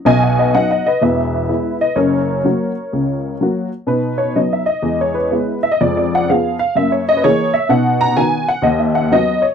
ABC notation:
X:1
M:4/4
L:1/16
Q:"Swing" 1/4=126
K:B
V:1 name="Honky-tonk piano"
(3[dg]2 [df]2 [Bd]2 (3[df]2 [df]2 [Bd]2 [Be]6 [Bd]2 | [Ac]12- [Ac]2 z2 | B2 c2 d e d2- (3d2 c2 B2- B2 e d | (3=d2 d2 f2 =f2 f2 e c ^d B c2 e2 |
f2 a2 g2 f2 d e f2 d2 c2 |]
V:2 name="Honky-tonk piano" clef=bass
[B,,,B,,]4 [F,B,D]4 [E,,,E,,]4 [G,B,E]4 | [F,,,F,,]4 [F,A,F]4 [C,,C,]4 [F,A,F]4 | [B,,D]4 [F,B,D]4 [E,,G,]4 [G,B,E]4 | [=F,,_A,]4 [=F,_C_A]4 [^F,,^A,]4 [E,A,G]4 |
[B,,D]4 [D,B,F]4 D,,4 [F,B,F]4 |]